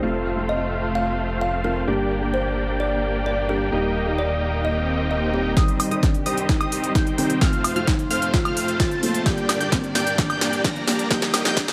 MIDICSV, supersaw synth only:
0, 0, Header, 1, 2, 480
1, 0, Start_track
1, 0, Key_signature, -2, "minor"
1, 0, Tempo, 461538
1, 30, Time_signature, 4, 2, 24, 8
1, 12198, End_track
2, 0, Start_track
2, 0, Title_t, "Supersaw synth"
2, 0, Program_c, 0, 81
2, 29, Note_on_c, 0, 57, 78
2, 29, Note_on_c, 0, 60, 69
2, 29, Note_on_c, 0, 65, 73
2, 30, Note_on_c, 0, 72, 69
2, 30, Note_on_c, 0, 77, 84
2, 1921, Note_off_c, 0, 57, 0
2, 1921, Note_off_c, 0, 60, 0
2, 1921, Note_off_c, 0, 65, 0
2, 1921, Note_off_c, 0, 72, 0
2, 1921, Note_off_c, 0, 77, 0
2, 1950, Note_on_c, 0, 58, 80
2, 1950, Note_on_c, 0, 62, 70
2, 1950, Note_on_c, 0, 67, 74
2, 1950, Note_on_c, 0, 74, 72
2, 1950, Note_on_c, 0, 79, 86
2, 3841, Note_off_c, 0, 58, 0
2, 3841, Note_off_c, 0, 62, 0
2, 3841, Note_off_c, 0, 67, 0
2, 3841, Note_off_c, 0, 74, 0
2, 3841, Note_off_c, 0, 79, 0
2, 3870, Note_on_c, 0, 58, 81
2, 3870, Note_on_c, 0, 63, 73
2, 3870, Note_on_c, 0, 67, 72
2, 3870, Note_on_c, 0, 75, 71
2, 3870, Note_on_c, 0, 79, 85
2, 5761, Note_off_c, 0, 58, 0
2, 5761, Note_off_c, 0, 63, 0
2, 5761, Note_off_c, 0, 67, 0
2, 5761, Note_off_c, 0, 75, 0
2, 5761, Note_off_c, 0, 79, 0
2, 5789, Note_on_c, 0, 63, 78
2, 5790, Note_on_c, 0, 55, 92
2, 6121, Note_off_c, 0, 55, 0
2, 6121, Note_off_c, 0, 63, 0
2, 6149, Note_on_c, 0, 55, 72
2, 6149, Note_on_c, 0, 60, 64
2, 6149, Note_on_c, 0, 63, 69
2, 6149, Note_on_c, 0, 72, 70
2, 6149, Note_on_c, 0, 75, 79
2, 6275, Note_off_c, 0, 55, 0
2, 6275, Note_off_c, 0, 60, 0
2, 6275, Note_off_c, 0, 63, 0
2, 6275, Note_off_c, 0, 72, 0
2, 6275, Note_off_c, 0, 75, 0
2, 6509, Note_on_c, 0, 55, 87
2, 6509, Note_on_c, 0, 60, 78
2, 6509, Note_on_c, 0, 72, 79
2, 6510, Note_on_c, 0, 63, 79
2, 6510, Note_on_c, 0, 75, 96
2, 6841, Note_off_c, 0, 55, 0
2, 6841, Note_off_c, 0, 60, 0
2, 6841, Note_off_c, 0, 63, 0
2, 6841, Note_off_c, 0, 72, 0
2, 6841, Note_off_c, 0, 75, 0
2, 6869, Note_on_c, 0, 55, 96
2, 6869, Note_on_c, 0, 63, 90
2, 6869, Note_on_c, 0, 75, 112
2, 6870, Note_on_c, 0, 60, 87
2, 6870, Note_on_c, 0, 72, 90
2, 7201, Note_off_c, 0, 55, 0
2, 7201, Note_off_c, 0, 60, 0
2, 7201, Note_off_c, 0, 63, 0
2, 7201, Note_off_c, 0, 72, 0
2, 7201, Note_off_c, 0, 75, 0
2, 7229, Note_on_c, 0, 55, 85
2, 7229, Note_on_c, 0, 60, 78
2, 7229, Note_on_c, 0, 63, 80
2, 7229, Note_on_c, 0, 72, 79
2, 7229, Note_on_c, 0, 79, 90
2, 7681, Note_off_c, 0, 55, 0
2, 7681, Note_off_c, 0, 60, 0
2, 7681, Note_off_c, 0, 63, 0
2, 7681, Note_off_c, 0, 72, 0
2, 7681, Note_off_c, 0, 79, 0
2, 7709, Note_on_c, 0, 57, 88
2, 7709, Note_on_c, 0, 60, 82
2, 7709, Note_on_c, 0, 65, 82
2, 7709, Note_on_c, 0, 72, 85
2, 7709, Note_on_c, 0, 77, 101
2, 8041, Note_off_c, 0, 57, 0
2, 8041, Note_off_c, 0, 60, 0
2, 8041, Note_off_c, 0, 65, 0
2, 8041, Note_off_c, 0, 72, 0
2, 8041, Note_off_c, 0, 77, 0
2, 8069, Note_on_c, 0, 57, 70
2, 8069, Note_on_c, 0, 60, 70
2, 8069, Note_on_c, 0, 65, 69
2, 8069, Note_on_c, 0, 72, 67
2, 8069, Note_on_c, 0, 77, 83
2, 8195, Note_off_c, 0, 57, 0
2, 8195, Note_off_c, 0, 60, 0
2, 8195, Note_off_c, 0, 65, 0
2, 8195, Note_off_c, 0, 72, 0
2, 8195, Note_off_c, 0, 77, 0
2, 8429, Note_on_c, 0, 57, 92
2, 8429, Note_on_c, 0, 60, 82
2, 8429, Note_on_c, 0, 65, 81
2, 8429, Note_on_c, 0, 72, 79
2, 8429, Note_on_c, 0, 77, 96
2, 8761, Note_off_c, 0, 57, 0
2, 8761, Note_off_c, 0, 60, 0
2, 8761, Note_off_c, 0, 65, 0
2, 8761, Note_off_c, 0, 72, 0
2, 8761, Note_off_c, 0, 77, 0
2, 8789, Note_on_c, 0, 72, 89
2, 8790, Note_on_c, 0, 57, 98
2, 8790, Note_on_c, 0, 60, 89
2, 8790, Note_on_c, 0, 65, 91
2, 8790, Note_on_c, 0, 77, 110
2, 9121, Note_off_c, 0, 57, 0
2, 9121, Note_off_c, 0, 60, 0
2, 9121, Note_off_c, 0, 65, 0
2, 9121, Note_off_c, 0, 72, 0
2, 9121, Note_off_c, 0, 77, 0
2, 9149, Note_on_c, 0, 57, 88
2, 9149, Note_on_c, 0, 60, 76
2, 9149, Note_on_c, 0, 65, 81
2, 9149, Note_on_c, 0, 72, 80
2, 9149, Note_on_c, 0, 81, 98
2, 9601, Note_off_c, 0, 57, 0
2, 9601, Note_off_c, 0, 60, 0
2, 9601, Note_off_c, 0, 65, 0
2, 9601, Note_off_c, 0, 72, 0
2, 9601, Note_off_c, 0, 81, 0
2, 9629, Note_on_c, 0, 58, 92
2, 9629, Note_on_c, 0, 62, 83
2, 9629, Note_on_c, 0, 67, 83
2, 9629, Note_on_c, 0, 74, 81
2, 9961, Note_off_c, 0, 58, 0
2, 9961, Note_off_c, 0, 62, 0
2, 9961, Note_off_c, 0, 67, 0
2, 9961, Note_off_c, 0, 74, 0
2, 9989, Note_on_c, 0, 58, 74
2, 9989, Note_on_c, 0, 62, 68
2, 9989, Note_on_c, 0, 67, 68
2, 9989, Note_on_c, 0, 74, 71
2, 9989, Note_on_c, 0, 79, 83
2, 10115, Note_off_c, 0, 58, 0
2, 10115, Note_off_c, 0, 62, 0
2, 10115, Note_off_c, 0, 67, 0
2, 10115, Note_off_c, 0, 74, 0
2, 10115, Note_off_c, 0, 79, 0
2, 10349, Note_on_c, 0, 58, 85
2, 10349, Note_on_c, 0, 62, 82
2, 10349, Note_on_c, 0, 67, 78
2, 10349, Note_on_c, 0, 74, 84
2, 10349, Note_on_c, 0, 79, 100
2, 10681, Note_off_c, 0, 58, 0
2, 10681, Note_off_c, 0, 62, 0
2, 10681, Note_off_c, 0, 67, 0
2, 10681, Note_off_c, 0, 74, 0
2, 10681, Note_off_c, 0, 79, 0
2, 10709, Note_on_c, 0, 58, 97
2, 10709, Note_on_c, 0, 62, 91
2, 10709, Note_on_c, 0, 67, 90
2, 10709, Note_on_c, 0, 74, 88
2, 10709, Note_on_c, 0, 79, 109
2, 11041, Note_off_c, 0, 58, 0
2, 11041, Note_off_c, 0, 62, 0
2, 11041, Note_off_c, 0, 67, 0
2, 11041, Note_off_c, 0, 74, 0
2, 11041, Note_off_c, 0, 79, 0
2, 11069, Note_on_c, 0, 58, 89
2, 11069, Note_on_c, 0, 62, 81
2, 11069, Note_on_c, 0, 67, 79
2, 11069, Note_on_c, 0, 74, 79
2, 11521, Note_off_c, 0, 58, 0
2, 11521, Note_off_c, 0, 62, 0
2, 11521, Note_off_c, 0, 67, 0
2, 11521, Note_off_c, 0, 74, 0
2, 11549, Note_on_c, 0, 58, 96
2, 11549, Note_on_c, 0, 63, 82
2, 11549, Note_on_c, 0, 67, 83
2, 11550, Note_on_c, 0, 79, 99
2, 11881, Note_off_c, 0, 58, 0
2, 11881, Note_off_c, 0, 63, 0
2, 11881, Note_off_c, 0, 67, 0
2, 11881, Note_off_c, 0, 79, 0
2, 11909, Note_on_c, 0, 58, 74
2, 11909, Note_on_c, 0, 63, 66
2, 11909, Note_on_c, 0, 67, 70
2, 11909, Note_on_c, 0, 75, 68
2, 11909, Note_on_c, 0, 79, 82
2, 12035, Note_off_c, 0, 58, 0
2, 12035, Note_off_c, 0, 63, 0
2, 12035, Note_off_c, 0, 67, 0
2, 12035, Note_off_c, 0, 75, 0
2, 12035, Note_off_c, 0, 79, 0
2, 12198, End_track
0, 0, End_of_file